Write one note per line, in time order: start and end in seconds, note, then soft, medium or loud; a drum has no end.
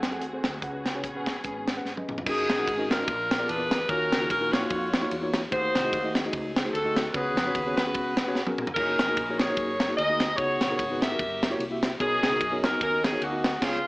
0.00 0.21 F#2 medium
0.00 0.61 A3 medium
0.00 0.61 C4 medium
0.00 2.23 F#4 medium
0.00 0.61 G#4 medium
0.00 snare loud
0.00 closed hi-hat medium
0.11 0.24 C4 medium
0.11 0.24 G#4 medium
0.11 0.24 A4 medium
0.11 0.25 F#5 medium
0.21 0.41 D#2 medium
0.21 closed hi-hat medium
0.33 0.52 C4 medium
0.33 0.53 G#4 medium
0.33 0.53 A4 medium
0.33 0.53 C5 medium
0.44 0.60 D2 medium
0.44 kick medium
0.44 snare loud
0.44 closed hi-hat medium
0.62 1.03 C#2 medium
0.62 1.23 C#3 medium
0.62 2.25 B3 medium
0.62 0.84 C#4 medium
0.62 2.25 C#4 medium
0.62 2.25 G#4 medium
0.62 0.85 G#4 medium
0.62 0.85 B4 medium
0.62 0.85 F#5 medium
0.62 kick loud
0.62 closed hi-hat medium
0.86 snare medium
0.86 closed hi-hat medium
0.95 1.06 C#4 medium
0.95 1.06 G#4 medium
0.95 1.07 B4 medium
0.95 1.07 C#5 medium
1.03 1.38 A#1 medium
1.03 kick medium
1.03 closed hi-hat medium
1.15 1.35 C#4 medium
1.15 1.35 G#4 medium
1.15 1.35 B4 medium
1.15 1.35 F#5 medium
1.26 kick medium
1.26 snare medium
1.26 closed hi-hat medium
1.44 1.79 G#1 medium
1.44 1.66 C#4 medium
1.44 1.66 G#4 medium
1.44 1.66 B4 medium
1.44 1.67 G#5 medium
1.44 kick medium
1.44 closed hi-hat medium
1.67 snare medium
1.67 closed hi-hat medium
1.75 1.88 C#4 medium
1.75 1.88 G#4 medium
1.75 1.88 B4 medium
1.75 1.89 F#5 medium
1.85 2.05 G#1 medium
1.85 snare soft
1.96 2.16 C#4 medium
1.96 2.16 G#4 medium
1.96 2.16 B4 medium
1.96 2.17 D#5 medium
1.96 high tom medium
2.08 2.23 G1 medium
2.08 mid tom medium
2.18 floor tom medium
2.25 2.46 F#1 loud
2.25 2.48 C#4 medium
2.25 3.04 C#4 medium
2.25 2.48 D#4 medium
2.25 3.04 D#4 medium
2.25 2.48 F#4 medium
2.25 2.88 G#4 loud
2.25 2.48 A#4 medium
2.25 2.48 D#5 medium
2.25 kick loud
2.25 crash loud
2.49 2.64 A#1 medium
2.49 snare loud
2.49 ride medium
2.57 2.70 C#4 medium
2.57 2.70 D#4 medium
2.57 2.70 F#4 medium
2.57 2.70 A#4 medium
2.57 2.71 F#5 medium
2.68 3.02 G#1 medium
2.68 kick medium
2.68 ride medium
2.77 2.92 C#4 medium
2.77 2.92 D#4 medium
2.77 2.92 F#4 medium
2.77 2.92 A#4 medium
2.77 2.93 D#5 medium
2.90 3.47 D4 medium
2.90 3.68 F4 medium
2.90 3.49 A#4 loud
2.90 snare loud
2.90 ride medium
2.98 3.07 C#4 medium
2.98 3.07 D#4 medium
2.98 3.08 F#4 medium
2.98 3.08 A#4 medium
2.98 3.08 D#5 medium
3.07 3.42 A#1 loud
3.07 3.67 A#2 medium
3.07 kick loud
3.07 ride medium
3.31 snare loud
3.31 ride medium
3.38 3.51 B3 medium
3.38 3.51 F4 medium
3.38 3.51 G#4 medium
3.38 3.51 A#4 medium
3.38 3.51 D5 medium
3.49 3.83 E2 medium
3.49 3.86 D4 medium
3.49 3.87 G#4 medium
3.49 3.90 B4 loud
3.49 ride medium
3.58 3.78 B3 medium
3.58 3.79 F4 medium
3.58 3.79 G#4 medium
3.58 3.79 A#4 medium
3.58 3.79 D5 medium
3.71 snare loud
3.71 ride medium
3.88 4.09 D#2 loud
3.88 4.49 D#3 medium
3.88 4.11 A#3 medium
3.88 4.67 C#4 medium
3.88 4.11 D#4 medium
3.88 4.11 F4 medium
3.88 4.52 F#4 medium
3.88 4.11 F#4 medium
3.88 4.29 A#4 loud
3.88 4.11 C#5 medium
3.88 kick loud
3.88 ride medium
4.12 4.27 C#2 medium
4.12 snare loud
4.12 ride medium
4.19 4.32 A#3 medium
4.19 4.32 D#4 medium
4.19 4.32 F4 medium
4.19 4.32 F#4 medium
4.19 4.33 G#4 medium
4.30 4.65 A#1 loud
4.30 4.52 A#4 loud
4.30 kick medium
4.30 ride medium
4.41 4.55 A#3 medium
4.41 4.55 D#4 medium
4.41 4.55 F4 medium
4.41 4.55 F#4 medium
4.41 4.55 A#4 medium
4.53 5.31 F4 medium
4.53 5.31 F#4 medium
4.53 5.11 C#5 loud
4.53 snare loud
4.53 ride medium
4.59 4.87 A#3 medium
4.59 4.87 D#4 medium
4.59 4.87 F4 medium
4.59 4.88 F#4 medium
4.59 4.87 C#5 medium
4.70 5.05 F2 loud
4.70 kick loud
4.70 ride medium
4.93 snare loud
4.93 ride medium
5.01 5.14 A#3 medium
5.01 5.14 D#4 medium
5.01 5.14 F4 medium
5.01 5.14 F#4 medium
5.01 5.14 C#5 loud
5.11 5.46 E2 medium
5.11 ride medium
5.21 5.41 A#3 medium
5.21 5.41 D#4 medium
5.21 5.42 F4 medium
5.21 5.42 F#4 medium
5.21 5.42 C#5 loud
5.34 snare loud
5.34 ride medium
5.51 5.72 D#2 loud
5.51 6.11 D#3 medium
5.51 5.73 A3 medium
5.51 5.73 D#4 medium
5.51 5.73 F#4 medium
5.51 6.30 F#4 medium
5.51 5.74 G#4 medium
5.51 6.15 G#4 medium
5.51 5.74 C5 medium
5.51 6.12 C5 loud
5.51 kick loud
5.51 ride medium
5.75 5.90 C2 medium
5.75 snare loud
5.75 ride medium
5.83 5.95 A3 medium
5.83 5.96 D#4 medium
5.83 5.96 F#4 medium
5.83 5.96 G#4 medium
5.83 5.96 D#5 medium
5.93 6.27 D#2 loud
5.93 kick medium
5.93 ride medium
6.04 6.18 A3 medium
6.04 6.18 D#4 medium
6.04 6.18 F#4 medium
6.04 6.18 G#4 medium
6.04 6.18 D#5 medium
6.15 6.75 C4 medium
6.15 6.74 G#4 medium
6.15 snare loud
6.15 ride medium
6.25 6.51 A3 medium
6.25 6.51 D#4 medium
6.25 6.51 F#4 medium
6.25 6.51 G#4 medium
6.25 6.52 D#5 medium
6.33 6.68 C#2 loud
6.33 kick loud
6.33 ride medium
6.56 snare loud
6.56 ride medium
6.64 6.76 A3 medium
6.64 6.76 D#4 medium
6.64 6.76 F#4 medium
6.64 6.77 G#4 medium
6.64 6.77 C5 loud
6.74 7.08 D2 loud
6.74 7.13 C4 medium
6.74 7.13 F#4 medium
6.74 7.11 A4 medium
6.74 ride medium
6.84 7.04 A3 medium
6.84 7.04 D#4 medium
6.84 7.04 F#4 medium
6.84 7.05 G#4 medium
6.84 7.05 D#5 medium
6.96 snare loud
6.96 ride medium
7.13 7.37 C#2 loud
7.13 7.74 C#3 medium
7.13 7.36 B3 medium
7.13 7.36 C#4 medium
7.13 7.36 F#4 medium
7.13 7.78 F#4 medium
7.13 7.36 G#4 medium
7.13 7.78 G#4 medium
7.13 7.76 B4 loud
7.13 7.36 C#5 medium
7.13 kick loud
7.13 ride medium
7.37 7.52 F2 medium
7.37 snare loud
7.37 ride medium
7.45 7.58 B3 medium
7.45 7.57 C#4 medium
7.45 7.58 F#4 medium
7.45 7.58 G#4 medium
7.45 7.58 C#5 loud
7.55 7.95 D#2 loud
7.55 kick loud
7.55 ride medium
7.65 7.80 B3 medium
7.65 7.80 C#4 medium
7.65 7.80 F#4 medium
7.65 7.80 G#4 medium
7.65 7.80 C#5 medium
7.77 8.56 F#4 medium
7.77 8.56 G#4 medium
7.77 8.55 B4 medium
7.77 snare loud
7.77 ride medium
7.86 8.12 B3 medium
7.86 8.13 C#4 medium
7.86 8.13 F#4 medium
7.86 8.13 G#4 medium
7.86 8.13 B4 medium
7.94 8.36 C#2 loud
7.94 kick loud
7.94 ride medium
8.17 snare loud
8.17 ride medium
8.27 8.39 B3 loud
8.27 8.39 C#4 medium
8.27 8.39 F#4 medium
8.27 8.40 G#4 medium
8.27 8.40 C#5 loud
8.35 8.71 B1 medium
8.35 snare medium
8.47 8.66 B3 medium
8.47 8.67 C#4 medium
8.47 8.67 F#4 medium
8.47 8.67 G#4 medium
8.47 8.67 A#4 loud
8.47 high tom medium
8.58 mid tom medium
8.67 floor tom loud
8.75 8.96 F#1 loud
8.75 8.98 A#3 medium
8.75 9.54 C#4 medium
8.75 8.98 D#4 medium
8.75 9.54 D#4 medium
8.75 8.99 F#4 medium
8.75 8.99 G#4 medium
8.75 9.35 A#4 loud
8.75 kick loud
8.75 crash medium
8.79 9.00 C#5 medium
8.99 9.15 F1 medium
8.99 snare loud
8.99 ride medium
9.08 9.20 A#3 medium
9.08 9.20 D#4 medium
9.08 9.20 F#4 medium
9.08 9.21 G#4 medium
9.08 9.21 A#4 loud
9.17 9.52 A#1 loud
9.17 kick loud
9.17 ride medium
9.29 9.43 A#3 medium
9.29 9.43 D#4 medium
9.29 9.43 F#4 medium
9.29 9.43 G#4 medium
9.29 9.43 C#5 medium
9.37 9.98 G#4 medium
9.37 9.98 A#4 medium
9.37 9.97 C#5 loud
9.37 snare loud
9.37 ride soft
9.48 9.75 A#3 medium
9.48 9.75 D#4 medium
9.48 9.75 F#4 medium
9.48 9.75 G#4 medium
9.48 9.76 C#5 medium
9.57 9.92 F#1 medium
9.57 kick loud
9.57 ride medium
9.80 snare loud
9.80 ride medium
9.88 10.01 A#3 medium
9.88 10.01 D#4 medium
9.88 10.01 F#4 medium
9.88 10.01 G#4 medium
9.88 10.02 C#5 medium
9.97 10.33 D2 loud
9.97 10.36 G#4 medium
9.97 10.36 A#4 medium
9.97 10.35 D#5 loud
9.97 ride medium
10.09 10.29 A#3 medium
10.09 10.29 D#4 medium
10.09 10.29 F#4 medium
10.09 10.29 G#4 medium
10.20 snare loud
10.20 ride medium
10.36 10.58 C#2 loud
10.36 10.98 C#3 medium
10.36 10.60 B3 medium
10.36 10.60 D#4 medium
10.36 11.16 F#4 medium
10.36 10.60 F#4 medium
10.36 10.60 G#4 medium
10.36 11.16 G#4 medium
10.36 10.76 C#5 loud
10.36 10.61 C#5 medium
10.36 kick loud
10.36 ride medium
10.61 10.76 A#1 medium
10.61 snare loud
10.61 ride medium
10.70 10.82 B3 medium
10.70 10.82 D#4 medium
10.70 10.82 F#4 medium
10.70 10.83 G#4 medium
10.70 10.83 A#4 medium
10.77 11.14 G#1 loud
10.77 11.00 C#5 loud
10.77 kick medium
10.77 ride medium
10.90 11.04 B3 medium
10.90 11.04 D#4 medium
10.90 11.04 F#4 medium
10.90 11.05 G#4 medium
10.90 11.05 B4 medium
11.01 11.79 G4 medium
11.01 11.79 A#4 medium
11.01 11.60 E5 loud
11.01 snare loud
11.01 ride medium
11.10 11.20 B3 medium
11.10 11.20 D#4 medium
11.10 11.20 F#4 medium
11.10 11.20 G#4 medium
11.10 11.20 A#4 medium
11.19 11.54 F#1 loud
11.19 kick loud
11.19 ride medium
11.43 snare loud
11.43 ride medium
11.49 11.62 A#3 loud
11.49 11.62 E4 medium
11.49 11.63 F#4 medium
11.49 11.63 G4 medium
11.49 11.63 C#5 loud
11.59 11.94 C2 medium
11.59 ride medium
11.70 11.90 A#3 medium
11.70 11.90 E4 medium
11.70 11.91 F#4 medium
11.70 11.91 G4 medium
11.70 11.91 E5 medium
11.83 snare loud
11.83 ride medium
12.00 12.20 B1 loud
12.00 12.60 B2 medium
12.00 12.22 B3 medium
12.00 12.78 C#4 medium
12.00 12.22 D#4 medium
12.00 12.78 D#4 medium
12.00 12.22 F#4 medium
12.00 12.60 G#4 loud
12.00 12.22 A#4 medium
12.00 12.23 C#5 medium
12.00 kick loud
12.00 ride medium
12.23 12.38 C#2 medium
12.23 snare loud
12.23 ride medium
12.31 12.43 B3 medium
12.31 12.44 D#4 medium
12.31 12.44 F#4 medium
12.31 12.44 A#4 medium
12.31 12.44 D#5 medium
12.40 12.75 F#2 loud
12.40 kick loud
12.40 ride medium
12.51 12.66 B3 medium
12.51 12.66 D#4 medium
12.51 12.66 F#4 medium
12.51 12.66 A#4 medium
12.51 12.66 C#5 medium
12.64 12.81 A#4 loud
12.64 snare loud
12.64 ride medium
12.71 12.98 B3 medium
12.71 12.98 D#4 medium
12.71 12.98 F#4 medium
12.71 12.98 A#4 medium
12.71 12.99 D#5 medium
12.81 13.16 D#2 medium
12.81 13.59 C#4 medium
12.81 13.22 D#4 medium
12.81 13.03 A#4 loud
12.81 kick loud
12.81 ride medium
13.04 13.22 G#4 loud
13.04 snare loud
13.04 ride medium
13.11 13.24 B3 medium
13.11 13.24 D#4 medium
13.11 13.24 F#4 medium
13.11 13.24 A#4 medium
13.11 13.25 C#5 medium
13.22 13.56 D2 medium
13.22 13.60 A#3 medium
13.22 13.60 D#4 medium
13.22 13.63 F#4 loud
13.22 ride medium
13.31 13.51 B3 medium
13.31 13.52 D#4 medium
13.31 13.52 F#4 medium
13.31 13.52 A#4 medium
13.31 13.52 D#5 medium
13.44 snare loud
13.44 ride medium
13.61 13.78 C#2 loud
13.61 13.78 C#3 loud
13.61 13.87 G#3 medium
13.61 13.77 B3 loud
13.61 13.87 B3 medium
13.61 13.78 C#4 loud
13.61 13.78 F4 loud
13.61 13.87 F4 loud
13.61 13.78 G#4 loud
13.61 13.78 C#5 loud
13.61 kick loud
13.61 snare loud
13.61 crash medium